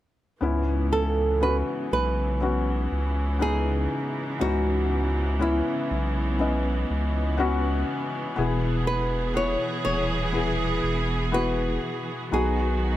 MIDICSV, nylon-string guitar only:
0, 0, Header, 1, 2, 480
1, 0, Start_track
1, 0, Key_signature, 4, "minor"
1, 0, Tempo, 1000000
1, 201, Time_signature, 4, 2, 24, 8
1, 2599, Tempo, 988468
1, 6267, End_track
2, 0, Start_track
2, 0, Title_t, "Nylon-string guitar"
2, 0, Program_c, 0, 24
2, 444, Note_on_c, 0, 69, 65
2, 683, Note_off_c, 0, 69, 0
2, 685, Note_on_c, 0, 71, 68
2, 750, Note_off_c, 0, 71, 0
2, 927, Note_on_c, 0, 71, 73
2, 1641, Note_off_c, 0, 71, 0
2, 1643, Note_on_c, 0, 68, 73
2, 2118, Note_on_c, 0, 66, 71
2, 2135, Note_off_c, 0, 68, 0
2, 2601, Note_off_c, 0, 66, 0
2, 2603, Note_on_c, 0, 64, 56
2, 3779, Note_off_c, 0, 64, 0
2, 4278, Note_on_c, 0, 71, 73
2, 4517, Note_off_c, 0, 71, 0
2, 4519, Note_on_c, 0, 73, 76
2, 4745, Note_off_c, 0, 73, 0
2, 4751, Note_on_c, 0, 73, 81
2, 5476, Note_off_c, 0, 73, 0
2, 5478, Note_on_c, 0, 71, 77
2, 5960, Note_on_c, 0, 68, 70
2, 5973, Note_off_c, 0, 71, 0
2, 6267, Note_off_c, 0, 68, 0
2, 6267, End_track
0, 0, End_of_file